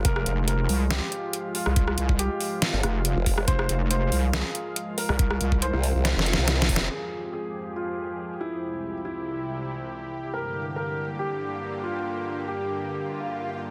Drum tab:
CC |------------------------------------------------|------------------------------------------------|------------------------------------------------|------------------------------------------------|
HH |x-----x-----x-----o-----x-----x-----x-----o-----|x-----x-----x-----o-----x-----x-----x-----o-----|x-----x-----x-----o-----x-----x-----x-----o-----|x-----x-----x-----o-----x-----x-----x-----o-----|
SD |---r--------------------o--------------------r--|---r--------------------o-----r--------------r--|---r--------------------o--------------------r--|---r--------------------o---o---o---o---o---o---|
BD |o-----------------------------------------------|o--------o--------------------------------o-----|o-----------------------------------------------|o--------o--------------------------------o-----|

CC |x-----------------------------------------------|------------------------------------------------|------------------------------------------------|------------------------------------------------|
HH |------------------------------------------------|------------------------------------------------|------------------------------------------------|------------------------------------------------|
SD |------------------------------------------------|------------------------------------------------|------------------------------------------------|------------------------------------------------|
BD |------------------------------------------------|------------------------------------------------|------------------------------------------------|------------------------------------------------|